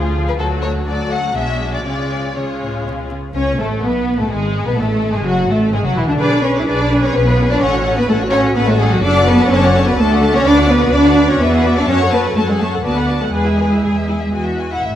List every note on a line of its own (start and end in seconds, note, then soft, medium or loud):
0.00 0.38 D2 medium
0.00 0.39 D2 soft
0.00 0.40 F3 soft
0.00 0.39 F4 soft
0.00 0.40 F4 soft
0.00 0.40 G#4 soft
0.28 0.33 B4 medium
0.39 1.32 D2 medium
0.39 0.84 F#3 soft
0.39 0.84 A3 soft
0.39 0.84 F#4 soft
0.39 0.47 A4 soft
0.39 0.84 A4 soft
0.63 0.71 C#5 medium
0.86 1.35 F#3 soft
0.86 1.35 A3 soft
0.86 1.35 F#4 soft
0.86 1.35 A4 soft
0.86 1.11 D5 soft
1.11 1.36 F#5 medium
1.35 1.86 B1 soft
1.35 1.86 B2 soft
1.35 1.85 G#3 soft
1.35 1.85 D4 soft
1.35 1.85 F#4 soft
1.35 1.84 G#4 soft
1.35 1.73 E5 medium
1.74 1.85 D5 soft
1.85 3.12 C#2 soft
1.85 2.30 C#3 soft
1.85 2.35 G#3 soft
1.85 2.35 C#4 soft
1.85 2.35 F4 soft
1.85 2.34 G#4 soft
1.85 2.35 D5 medium
2.35 2.44 C#3 soft
2.35 3.13 G#3 soft
2.35 3.13 C#4 soft
2.35 3.13 F4 soft
2.35 3.13 G#4 soft
2.35 2.85 C#5 soft
2.61 2.85 A2 soft
2.85 3.10 B2 soft
3.10 3.35 C#3 soft
3.34 3.57 C#2 medium
3.34 3.42 C#4 medium
3.34 3.57 C#4 medium
3.34 3.57 C#5 medium
3.58 3.82 A1 medium
3.58 3.82 A3 medium
3.58 3.83 A3 medium
3.58 3.67 A4 medium
3.82 4.18 B1 medium
3.82 4.18 B3 medium
3.82 4.19 B3 medium
3.82 4.18 B4 medium
4.17 4.23 A1 medium
4.17 4.30 A3 medium
4.17 4.31 A3 medium
4.17 4.30 A4 medium
4.30 4.65 G#1 medium
4.30 4.65 G#3 medium
4.30 4.66 G#3 medium
4.30 4.65 G#3 medium
4.30 4.66 G#4 medium
4.65 4.77 B1 medium
4.65 4.77 B3 medium
4.65 4.70 B3 medium
4.65 4.78 B3 medium
4.65 4.77 B4 medium
4.77 5.13 A1 medium
4.77 5.13 A3 medium
4.77 5.13 A4 medium
5.13 5.25 G#1 medium
5.13 5.25 G#3 medium
5.13 5.26 G#3 medium
5.13 5.25 G#4 medium
5.25 5.48 F#1 medium
5.25 5.49 F#3 medium
5.25 5.49 F#4 medium
5.49 5.72 A1 medium
5.49 5.73 A3 medium
5.49 5.57 A3 medium
5.49 5.73 A3 medium
5.49 5.73 A4 medium
5.72 5.84 G#1 medium
5.72 5.77 G#3 medium
5.72 5.85 G#3 medium
5.72 5.84 G#4 medium
5.84 5.96 F#1 medium
5.84 5.96 F#3 medium
5.84 5.97 F#3 medium
5.84 5.96 F#4 medium
5.96 6.01 E1 medium
5.96 6.08 E3 medium
5.96 6.08 E4 medium
5.96 6.01 E4 medium
6.07 6.20 D2 medium
6.07 6.20 D3 medium
6.07 6.13 D4 medium
6.07 6.20 D4 medium
6.19 6.62 B1 medium
6.19 6.44 D4 medium
6.19 6.30 G#4 medium
6.19 6.31 B4 medium
6.19 6.31 B4 soft
6.19 6.43 D5 medium
6.31 6.42 G#4 soft
6.31 6.41 B4 soft
6.31 6.43 D5 soft
6.42 6.60 C#4 medium
6.42 6.54 G#4 medium
6.42 6.54 B4 soft
6.42 6.55 B4 medium
6.42 6.51 C#5 medium
6.55 6.66 G#4 medium
6.55 6.66 B4 medium
6.55 6.68 D5 medium
6.60 6.67 E4 medium
6.67 7.09 B1 medium
6.67 7.03 D4 medium
6.67 6.78 G#4 soft
6.67 6.78 B4 soft
6.67 6.78 B4 medium
6.67 7.02 D5 medium
6.79 6.90 G#4 medium
6.79 6.89 B4 soft
6.79 6.91 D5 medium
6.90 7.02 G#4 medium
6.90 7.02 B4 soft
6.90 7.01 B4 medium
7.02 7.15 C#4 medium
7.02 7.13 G#4 soft
7.02 7.14 B4 soft
7.02 7.14 C#5 medium
7.02 7.14 D5 soft
7.14 7.56 B1 medium
7.14 7.49 B3 medium
7.14 7.25 C#4 medium
7.14 7.25 G#4 medium
7.14 7.25 B4 medium
7.14 7.50 B4 medium
7.26 7.38 F4 medium
7.26 7.38 B4 medium
7.26 7.38 C#5 soft
7.39 7.50 C#4 medium
7.39 7.50 G#4 medium
7.39 7.50 B4 medium
7.49 7.61 D4 medium
7.49 7.61 F4 medium
7.49 7.61 B4 medium
7.49 7.62 C#5 medium
7.49 7.61 D5 medium
7.60 8.03 A1 medium
7.60 7.96 C#4 medium
7.60 7.72 C#4 medium
7.60 7.72 A4 medium
7.60 7.96 C#5 medium
7.60 7.72 F#5 medium
7.73 7.85 F#4 medium
7.73 7.85 C#5 medium
7.85 7.97 C#4 medium
7.85 7.96 A4 medium
7.85 7.97 F#5 medium
7.96 8.01 B3 medium
7.96 8.09 F#4 medium
7.96 8.08 B4 medium
7.96 8.08 C#5 medium
8.08 8.50 A1 medium
8.08 8.16 A3 medium
8.08 8.19 C#4 medium
8.08 8.19 A4 medium
8.08 8.17 A4 medium
8.08 8.20 F#5 medium
8.20 8.32 F#4 medium
8.20 8.32 C#5 medium
8.31 8.55 C#4 loud
8.31 8.44 C#4 medium
8.31 8.44 A4 medium
8.31 8.40 C#5 medium
8.31 8.44 F#5 medium
8.44 8.56 F#4 medium
8.44 8.56 C#5 medium
8.55 8.97 A1 medium
8.55 8.60 B3 loud
8.55 8.67 C#4 medium
8.55 8.67 A4 medium
8.55 8.68 B4 medium
8.55 8.67 F#5 medium
8.67 8.79 A3 medium
8.67 8.80 F#4 medium
8.67 8.79 A4 medium
8.67 8.80 C#5 medium
8.78 8.90 G#3 medium
8.78 8.91 C#4 medium
8.78 8.91 G#4 medium
8.78 8.91 A4 medium
8.78 8.92 F#5 medium
8.91 9.03 F#3 medium
8.91 9.03 F#4 medium
8.91 9.04 C#5 medium
9.02 9.45 F#1 medium
9.02 9.13 D4 medium
9.02 9.26 D4 loud
9.02 9.13 A4 medium
9.02 9.27 D5 medium
9.02 9.15 A5 medium
9.15 9.27 F#4 medium
9.15 9.27 D5 medium
9.15 9.28 F#5 medium
9.26 9.50 B3 loud
9.26 9.38 D4 medium
9.26 9.38 A4 medium
9.26 9.51 B4 medium
9.26 9.40 A5 medium
9.38 9.50 F#4 medium
9.38 9.50 D5 medium
9.38 9.51 F#5 medium
9.50 9.92 F#1 medium
9.50 9.86 C#4 loud
9.50 9.61 D4 medium
9.50 9.61 A4 medium
9.50 9.87 C#5 medium
9.50 9.62 A5 medium
9.62 9.74 F#4 medium
9.62 9.74 D5 medium
9.62 9.75 F#5 medium
9.74 9.86 D4 medium
9.74 9.86 A4 medium
9.74 9.87 A5 medium
9.86 9.98 B3 medium
9.86 9.98 F#4 medium
9.86 9.98 B4 medium
9.86 9.98 D5 medium
9.86 9.98 F#5 medium
9.98 10.39 D2 medium
9.98 10.33 A3 loud
9.98 10.09 D4 medium
9.98 10.09 A4 medium
9.98 10.34 A4 medium
9.98 10.09 A5 medium
10.09 10.21 F#4 medium
10.09 10.21 D5 medium
10.09 10.22 F#5 medium
10.20 10.33 D4 medium
10.20 10.33 A4 medium
10.20 10.34 A5 medium
10.33 10.46 C#4 loud
10.33 10.45 F#4 medium
10.33 10.45 C#5 medium
10.33 10.45 D5 medium
10.33 10.45 F#5 medium
10.45 10.87 D2 medium
10.45 10.56 D4 medium
10.45 10.69 D4 loud
10.45 10.56 B4 medium
10.45 10.56 D5 medium
10.45 10.69 D5 medium
10.57 10.69 F#4 medium
10.57 10.69 D5 medium
10.57 10.69 F#5 medium
10.69 10.93 B3 loud
10.69 10.81 D4 medium
10.69 10.81 B4 medium
10.69 10.93 B4 medium
10.69 10.81 D5 medium
10.80 10.93 F#4 medium
10.80 10.93 D5 medium
10.80 10.92 F#5 medium
10.92 11.35 D2 medium
10.92 11.28 D4 loud
10.92 11.04 D4 medium
10.92 11.04 B4 medium
10.92 11.29 D5 medium
10.92 11.04 D5 medium
11.05 11.17 F#4 medium
11.05 11.17 D5 medium
11.05 11.16 F#5 medium
11.17 11.29 D4 medium
11.17 11.29 B4 medium
11.17 11.29 D5 medium
11.28 11.40 C#4 medium
11.28 11.40 F#4 medium
11.28 11.41 C#5 medium
11.28 11.40 D5 medium
11.28 11.40 F#5 medium
11.40 11.82 E2 medium
11.40 11.76 B3 loud
11.40 11.52 F#4 medium
11.40 11.76 B4 medium
11.40 11.52 D5 medium
11.40 11.51 E5 medium
11.52 11.64 G#4 medium
11.52 11.64 E5 medium
11.52 11.64 F#5 medium
11.63 11.76 F#4 medium
11.63 11.76 D5 medium
11.63 11.76 E5 medium
11.75 11.89 D4 loud
11.75 11.88 G#4 medium
11.75 11.88 D5 medium
11.75 11.88 E5 medium
11.75 11.87 F#5 medium
11.87 12.30 F#2 medium
11.87 11.97 C#4 loud
11.87 12.00 F#4 medium
11.87 12.00 C#5 medium
11.87 12.12 C#5 medium
11.87 11.99 A5 medium
11.99 12.12 A4 soft
11.99 12.11 F#5 medium
12.11 12.20 B3 medium
12.11 12.24 F#4 medium
12.11 12.36 B4 medium
12.11 12.24 C#5 medium
12.11 12.23 A5 medium
12.24 12.36 A4 medium
12.24 12.36 F#5 medium
12.35 12.78 F#2 medium
12.35 12.41 A3 medium
12.35 12.47 F#4 soft
12.35 12.41 A4 medium
12.35 12.47 C#5 medium
12.35 12.47 A5 soft
12.48 12.53 G#3 medium
12.48 12.60 G#4 medium
12.48 12.60 A4 soft
12.48 12.60 F#5 medium
12.60 12.68 A3 medium
12.60 12.72 F#4 medium
12.60 12.84 A4 medium
12.60 12.72 C#5 soft
12.60 12.72 A5 soft
12.72 12.84 A4 soft
12.72 12.84 F#5 soft
12.83 13.28 D2 medium
12.83 13.20 B3 medium
12.83 12.95 F#4 soft
12.83 13.20 B4 medium
12.83 12.95 D5 soft
12.83 12.96 A5 soft
12.95 13.08 A4 soft
12.95 13.08 F#5 soft
12.95 13.09 F#5 soft
13.08 13.21 F#4 soft
13.08 13.20 D5 soft
13.08 13.21 A5 soft
13.21 13.33 A3 medium
13.21 13.33 A4 soft
13.21 13.33 A4 medium
13.21 13.33 F#5 soft
13.21 13.34 F#5 soft
13.32 13.77 E2 medium
13.32 14.31 G#3 medium
13.32 13.43 G#4 soft
13.32 14.32 G#4 medium
13.32 13.44 B4 soft
13.32 13.46 G#5 soft
13.44 13.58 E4 soft
13.44 13.56 G#4 soft
13.44 13.59 E5 soft
13.58 13.69 G#4 soft
13.58 13.71 B4 soft
13.58 13.71 G#5 soft
13.70 13.83 E4 soft
13.70 13.81 G#4 soft
13.70 13.85 E5 soft
13.82 14.27 E2 soft
13.82 13.90 G#4 medium
13.82 13.95 G#5 soft
13.96 14.09 E5 soft
14.08 14.16 E4 medium
14.08 14.21 G#5 soft
14.20 14.33 E5 soft
14.33 14.77 E2 medium
14.33 14.70 F#4 soft
14.33 14.45 G#5 soft
14.46 14.58 E5 soft
14.59 14.71 G#5 soft
14.71 14.83 E4 soft
14.71 14.81 E5 soft
14.71 14.82 F#5 soft
14.82 14.95 A1 soft
14.82 14.95 A2 soft
14.82 14.95 E5 soft